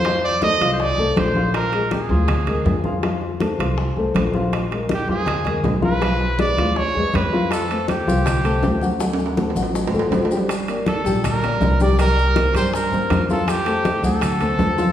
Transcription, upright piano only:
\new Staff \with { instrumentName = "Upright piano" } { \time 4/4 \key bes \major \tempo 4 = 161 <f f' f''>4 <a a' c''>8 <f f' f''>4 <a a' c''>4 <f f' f''>8~ | <f f' f''>8 <aes aes' bes'>4 <f f' f''>4 <aes aes' bes'>4 <f f' f''>8 | <f f' f''>4 <a a' c''>8 <f f' f''>4 <a a' c''>4 <f f' f''>8~ | <f f' f''>8 <aes aes' bes'>4 <f f' f''>4 <aes aes' bes'>4 <f f' f''>8 |
<f f' f''>4 <gis gis' b'>8 <f f' f''>4 <gis gis' b'>4 <f f' f''>8~ | <f f' f''>8 <a a' c''>4 <f f' f''>4 <a a' c''>4 <ges ges' ges''>8 | <fis fis' fis''>4 <a a' c''>8 <fis fis' fis''>4 <a a' c''>4 <g g' g''>8~ | <g g' g''>8 <bes bes' d''>4 <g g' g''>4 <bes bes' d''>4 <g g' g''>8 |
<g g' g''>4 <bes bes' c''>8 <g g' g''>4 <bes bes' c''>4 <f f' f''>8~ | <f f' f''>8 <a a' c''>4 <fis fis' fis''>4 <a a' c''>4 <f f' f''>8 | }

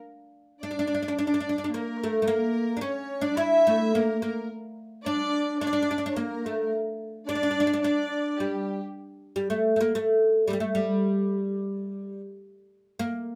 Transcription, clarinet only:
\new Staff \with { instrumentName = "Clarinet" } { \time 4/4 \tempo 4 = 108 r4 d'4 d'4 bes8 a8 | bes4 cis'8. d'16 e'4 bes8 bes8 | r4 d'4 d'4 bes8 a8 | r4 d'4 d'4 g8. r16 |
r1 | r1 | }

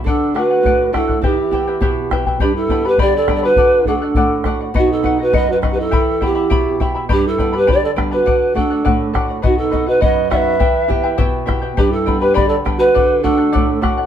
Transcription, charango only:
\new Staff \with { instrumentName = "Charango" } { \time 2/4 \key e \minor \tempo 4 = 102 <a' d'' fis''>8 <a' d'' fis''>16 <d'' fis''>16 <a' d'' fis''>8 <a' d'' fis''>16 <d'' fis''>16 | <e' g' b' e'' g''>8 <e' b' e'' g''>16 <e' b' g''>16 <e' g' b' e'' g''>8 <e' b' e'' g''>16 <e' b' g''>16 | <g' b' d'' g'' b''>8 <b' d'' g'' b''>16 <b' d'' b''>16 <g' b' d'' g'' b''>8 <b' d'' g'' b''>16 <b' d'' b''>16 | <a' d'' fis''>8 <a' d'' fis''>16 <d'' fis''>16 <a' d'' fis''>8 <a' d'' fis''>16 <d'' fis''>16 |
<b' dis'' fis''>8 <b' dis'' fis''>16 <dis'' fis''>16 <b' dis'' fis''>8 <b' dis'' fis''>16 <dis'' fis''>16 | <e' g' e'' g'' b''>8 <e' e'' g'' b''>16 <e' e'' b''>16 <e' g' e'' g'' b''>8 <e' e'' g'' b''>16 <e' e'' b''>16 | <g' b' d'' g'' b''>8 <b' d'' g'' b''>16 <b' d'' b''>16 <g' b' d'' g'' b''>8 <b' d'' g'' b''>16 <b' d'' b''>16 | <a' d'' fis''>8 <a' d'' fis''>16 <d'' fis''>16 <a' d'' fis''>8 <a' d'' fis''>16 <d'' fis''>16 |
<b' dis'' fis''>8 <b' dis'' fis''>16 <dis'' fis''>16 <b' dis'' fis''>8 <b' dis'' fis''>16 <dis'' fis''>16 | <e' g' b' e'' g''>8 <e' b' e'' g''>16 <e' b' g''>16 <e' g' b' e'' g''>8 <e' b' e'' g''>16 <e' b' g''>16 | <g' b' d'' g'' b''>8 <b' d'' g'' b''>16 <b' d'' b''>16 <g' b' d'' g'' b''>8 <b' d'' g'' b''>16 <b' d'' b''>16 | <a' d'' fis''>8 <a' d'' fis''>16 <d'' fis''>16 <a' d'' fis''>8 <a' d'' fis''>16 <d'' fis''>16 | }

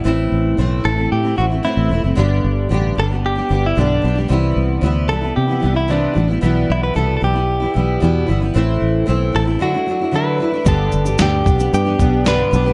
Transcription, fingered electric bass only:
\new Staff \with { instrumentName = "Fingered electric bass" } { \clef bass \time 4/4 \key g \major \tempo 4 = 113 a,,8 a,,8 b,,8 a,,8 a,8 a,,8 r16 a,,16 e,,16 fis,,16 | g,,8 g,,8 a,,8 g,,4 g,,8 b,,8 b,,8 | c,8 c,8 d,8 c,8 c8 c,4 a,,8 | b,,8 b,,8 c,8 b,,4 b,,8 e,8 g,,8 |
a,,8 a,,8 b,,8 a,,8 r2 | g,,8 g,,8 d,8 b,,8 g,8 b,,4 b,,8 | }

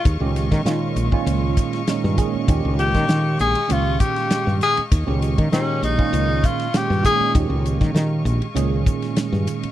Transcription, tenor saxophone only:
\new Staff \with { instrumentName = "Tenor saxophone" } { \time 4/4 \key ees \mixolydian \tempo 4 = 99 r1 | r8 g'4 aes'8 f'8 g'4 aes'8 | r4 des'8 ees'4 f'8 g'8 aes'8 | r1 | }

